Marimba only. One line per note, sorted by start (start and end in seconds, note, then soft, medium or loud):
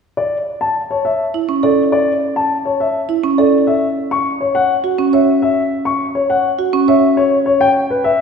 1.34 1.53 E4 soft
1.49 1.68 C#4 medium
1.63 1.82 A4 soft
3.09 3.28 E4 medium
3.24 3.42 C#4 medium
3.38 3.57 A4 soft
4.84 5.03 F#4 medium
4.98 5.17 C#4 medium
5.13 5.32 C#5 medium
6.59 6.77 F#4 medium
6.73 6.92 C#4 medium
6.88 7.07 C#5 medium